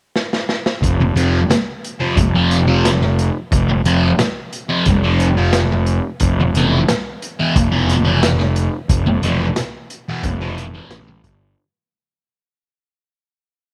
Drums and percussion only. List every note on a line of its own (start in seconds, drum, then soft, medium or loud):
0.16 snare medium
0.33 snare medium
0.49 snare medium
0.66 snare medium
0.83 kick medium
0.83 closed hi-hat medium
1.17 closed hi-hat medium
1.51 snare loud
1.51 closed hi-hat medium
1.84 closed hi-hat medium
2.17 kick medium
2.17 closed hi-hat medium
2.51 closed hi-hat medium
2.85 snare loud
2.85 closed hi-hat medium
3.01 snare soft
3.19 closed hi-hat medium
3.52 kick loud
3.52 closed hi-hat medium
3.85 closed hi-hat medium
4.19 snare loud
4.19 closed hi-hat medium
4.53 closed hi-hat medium
4.86 kick loud
4.86 closed hi-hat medium
5.20 closed hi-hat medium
5.53 snare loud
5.53 closed hi-hat medium
5.86 closed hi-hat medium
6.20 kick loud
6.20 closed hi-hat medium
6.55 closed hi-hat medium
6.88 snare loud
6.88 closed hi-hat medium
7.22 closed hi-hat medium
7.56 kick loud
7.56 closed hi-hat medium
7.89 closed hi-hat medium
8.23 snare loud
8.23 closed hi-hat medium
8.40 snare soft
8.56 closed hi-hat medium
8.89 kick loud
8.89 closed hi-hat medium
9.23 closed hi-hat medium
9.56 snare loud
9.56 closed hi-hat medium
9.90 closed hi-hat medium
10.23 kick loud
10.23 closed hi-hat medium
10.58 closed hi-hat medium
10.91 snare loud
10.91 closed hi-hat medium
11.24 kick medium
11.24 closed hi-hat medium